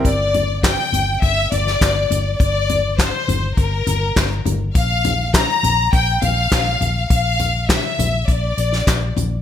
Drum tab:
HH |x-x-x-x-x-x-x-x-|x-x-x-x-x-x-x-x-|x-x-x-x-x-x-x-x-|x-x-x-x-x-x-x-x-|
CP |----x-------x---|----x-------x---|----x-------x---|----x-------x---|
SD |----o------oo---|----o-------o---|----o-------o---|----o------oo---|
FT |--o---o---o---o-|--o---o---o---o-|--o---o---o---o-|--o---o-------o-|
BD |o---o---o---o---|o---o---o---o---|o---o---o---o---|o---o---o---o---|